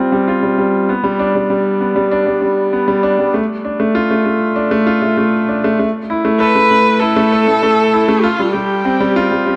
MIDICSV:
0, 0, Header, 1, 3, 480
1, 0, Start_track
1, 0, Key_signature, 0, "minor"
1, 0, Tempo, 612245
1, 699, Time_signature, 4, 2, 24, 8
1, 7497, End_track
2, 0, Start_track
2, 0, Title_t, "Viola"
2, 0, Program_c, 0, 41
2, 5016, Note_on_c, 0, 71, 108
2, 5488, Note_on_c, 0, 69, 97
2, 5500, Note_off_c, 0, 71, 0
2, 6447, Note_on_c, 0, 65, 89
2, 6459, Note_off_c, 0, 69, 0
2, 6688, Note_on_c, 0, 67, 82
2, 6700, Note_off_c, 0, 65, 0
2, 7414, Note_off_c, 0, 67, 0
2, 7497, End_track
3, 0, Start_track
3, 0, Title_t, "Grand piano"
3, 0, Program_c, 1, 0
3, 0, Control_c, 1, 64, 127
3, 0, Note_on_c, 1, 55, 69
3, 0, Note_on_c, 1, 60, 67
3, 0, Note_on_c, 1, 65, 78
3, 93, Note_off_c, 1, 60, 0
3, 97, Note_off_c, 1, 55, 0
3, 97, Note_on_c, 1, 55, 86
3, 212, Note_off_c, 1, 55, 0
3, 218, Note_off_c, 1, 65, 0
3, 218, Note_on_c, 1, 65, 78
3, 333, Note_off_c, 1, 65, 0
3, 336, Note_on_c, 1, 55, 66
3, 406, Note_off_c, 1, 55, 0
3, 457, Note_on_c, 1, 55, 69
3, 527, Note_off_c, 1, 55, 0
3, 697, Note_on_c, 1, 59, 73
3, 710, Control_c, 1, 64, 0
3, 812, Note_off_c, 1, 59, 0
3, 812, Note_on_c, 1, 55, 90
3, 841, Control_c, 1, 64, 127
3, 930, Note_off_c, 1, 55, 0
3, 936, Note_on_c, 1, 62, 87
3, 1052, Note_off_c, 1, 62, 0
3, 1060, Note_on_c, 1, 55, 66
3, 1128, Note_off_c, 1, 55, 0
3, 1176, Note_on_c, 1, 55, 73
3, 1246, Note_off_c, 1, 55, 0
3, 1417, Note_on_c, 1, 59, 62
3, 1532, Note_off_c, 1, 59, 0
3, 1535, Note_on_c, 1, 55, 85
3, 1651, Note_off_c, 1, 55, 0
3, 1658, Note_on_c, 1, 62, 83
3, 1773, Note_off_c, 1, 62, 0
3, 1777, Note_on_c, 1, 55, 65
3, 1847, Note_off_c, 1, 55, 0
3, 1896, Note_on_c, 1, 55, 62
3, 1966, Note_off_c, 1, 55, 0
3, 2139, Note_on_c, 1, 59, 67
3, 2253, Note_off_c, 1, 59, 0
3, 2256, Note_on_c, 1, 55, 88
3, 2372, Note_off_c, 1, 55, 0
3, 2376, Note_on_c, 1, 62, 88
3, 2492, Note_off_c, 1, 62, 0
3, 2499, Note_on_c, 1, 55, 65
3, 2568, Note_off_c, 1, 55, 0
3, 2619, Note_on_c, 1, 57, 72
3, 2628, Control_c, 1, 64, 0
3, 2688, Note_off_c, 1, 57, 0
3, 2748, Control_c, 1, 64, 127
3, 2858, Note_on_c, 1, 62, 61
3, 2973, Note_off_c, 1, 62, 0
3, 2977, Note_on_c, 1, 57, 76
3, 3092, Note_off_c, 1, 57, 0
3, 3096, Note_on_c, 1, 65, 85
3, 3212, Note_off_c, 1, 65, 0
3, 3219, Note_on_c, 1, 57, 68
3, 3288, Note_off_c, 1, 57, 0
3, 3338, Note_on_c, 1, 57, 64
3, 3407, Note_off_c, 1, 57, 0
3, 3574, Note_on_c, 1, 62, 69
3, 3691, Note_off_c, 1, 62, 0
3, 3694, Note_on_c, 1, 57, 89
3, 3811, Note_off_c, 1, 57, 0
3, 3815, Note_on_c, 1, 65, 86
3, 3931, Note_off_c, 1, 65, 0
3, 3936, Note_on_c, 1, 57, 59
3, 4006, Note_off_c, 1, 57, 0
3, 4057, Note_on_c, 1, 57, 72
3, 4127, Note_off_c, 1, 57, 0
3, 4300, Note_on_c, 1, 62, 66
3, 4414, Note_off_c, 1, 62, 0
3, 4424, Note_on_c, 1, 57, 82
3, 4531, Note_off_c, 1, 57, 0
3, 4543, Note_on_c, 1, 57, 73
3, 4550, Control_c, 1, 64, 0
3, 4610, Note_off_c, 1, 57, 0
3, 4701, Control_c, 1, 64, 127
3, 4782, Note_on_c, 1, 64, 62
3, 4895, Note_off_c, 1, 64, 0
3, 4898, Note_on_c, 1, 57, 79
3, 5013, Note_off_c, 1, 57, 0
3, 5019, Note_on_c, 1, 69, 84
3, 5133, Note_off_c, 1, 69, 0
3, 5138, Note_on_c, 1, 57, 69
3, 5207, Note_off_c, 1, 57, 0
3, 5260, Note_on_c, 1, 57, 65
3, 5328, Note_off_c, 1, 57, 0
3, 5498, Note_on_c, 1, 64, 69
3, 5613, Note_off_c, 1, 64, 0
3, 5617, Note_on_c, 1, 57, 94
3, 5732, Note_off_c, 1, 57, 0
3, 5741, Note_on_c, 1, 69, 87
3, 5854, Note_off_c, 1, 69, 0
3, 5861, Note_on_c, 1, 57, 65
3, 5929, Note_off_c, 1, 57, 0
3, 5981, Note_on_c, 1, 57, 70
3, 6049, Note_off_c, 1, 57, 0
3, 6221, Note_on_c, 1, 64, 66
3, 6334, Note_off_c, 1, 64, 0
3, 6339, Note_on_c, 1, 57, 88
3, 6453, Note_off_c, 1, 57, 0
3, 6456, Note_on_c, 1, 65, 94
3, 6469, Control_c, 1, 64, 0
3, 6572, Note_off_c, 1, 65, 0
3, 6580, Note_on_c, 1, 55, 70
3, 6631, Control_c, 1, 64, 127
3, 6648, Note_off_c, 1, 55, 0
3, 6699, Note_on_c, 1, 55, 65
3, 6768, Note_off_c, 1, 55, 0
3, 6938, Note_on_c, 1, 60, 73
3, 7053, Note_off_c, 1, 60, 0
3, 7059, Note_on_c, 1, 55, 91
3, 7174, Note_off_c, 1, 55, 0
3, 7183, Note_on_c, 1, 65, 91
3, 7295, Note_off_c, 1, 65, 0
3, 7302, Note_on_c, 1, 55, 69
3, 7369, Note_off_c, 1, 55, 0
3, 7420, Note_on_c, 1, 55, 74
3, 7488, Note_off_c, 1, 55, 0
3, 7497, End_track
0, 0, End_of_file